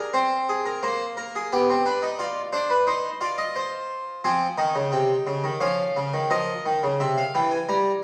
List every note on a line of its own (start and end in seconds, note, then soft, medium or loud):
0.00 0.11 D4 medium
0.00 0.12 A#4 medium
0.13 0.80 C4 medium
0.13 0.35 C5 medium
0.49 0.65 G#4 medium
0.66 0.82 A#4 medium
0.83 1.49 A#3 medium
0.83 1.04 C5 medium
1.17 1.33 A#4 medium
1.35 1.51 G#4 medium
1.52 1.68 B3 medium
1.52 1.73 G4 medium
1.69 1.85 C4 medium
1.86 2.02 D4 medium
1.86 2.07 B4 medium
2.02 2.18 D#4 medium
2.19 2.40 F4 medium
2.19 2.40 D5 medium
2.52 2.74 D4 medium
2.52 2.69 C5 medium
2.70 2.86 B4 medium
2.87 3.08 D#4 medium
2.87 3.08 C5 medium
3.21 4.20 F4 medium
3.21 3.38 D5 medium
3.38 3.55 D#5 medium
3.56 4.22 C5 medium
4.24 4.45 F3 medium
4.24 4.45 C4 medium
4.24 4.90 G#5 medium
4.58 4.74 D#3 loud
4.58 5.58 D#4 medium
4.75 4.92 C#3 medium
4.92 5.14 C3 medium
4.92 5.59 G5 medium
5.27 5.43 C#3 medium
5.44 5.61 D#3 medium
5.61 5.82 F3 medium
5.61 6.28 C#4 medium
5.61 6.28 F5 medium
5.97 6.13 C#3 medium
6.13 6.30 D#3 medium
6.30 6.52 F3 medium
6.30 8.04 A#4 medium
6.30 6.98 D#5 medium
6.66 6.82 D#3 medium
6.83 7.00 C#3 medium
7.00 7.21 C3 medium
7.00 7.17 E5 medium
7.18 7.34 F5 medium
7.35 7.56 E3 medium
7.35 7.51 G5 medium
7.51 7.68 G#5 medium
7.69 7.90 G3 medium
7.69 7.90 A#5 medium